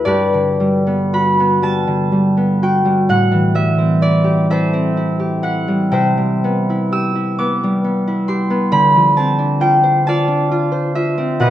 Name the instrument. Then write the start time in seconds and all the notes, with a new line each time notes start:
harp
Already playing: A3 D4 F#4 D6
0.05 G2 G4 B4 D5
0.34 D3
0.60 G3
0.87 B3
1.13 F#4 B5
1.40 B3
1.62 G3 A5
1.87 D3
2.12 G3
2.37 B3
2.63 F#4 G5
2.85 G3
3.09 A2 F#5
3.32 E3
3.55 G3 E5
3.78 C4
4.02 E4 D5
4.24 G4
4.50 E4 A4 C5 E5
4.73 C4
4.97 E4
5.19 G4
5.43 E4 F#5
5.68 G3
5.92 C3 C5 E5 G5
6.18 G3
6.44 B3
6.70 E4
6.92 G4 E6
7.15 E4
7.39 B3 D6
7.64 G3
7.84 B3
8.07 E4
8.28 G4 C6
8.50 B3
8.72 D3 B5
8.96 F3
9.17 C4 A5
9.39 D4
9.60 F4 G5
9.83 C5
10.07 F4 D5 F5 A5
10.27 D4
10.51 F4
10.72 C5
10.95 F4 E5
11.18 C4
11.40 B2 B4 D#5 F#5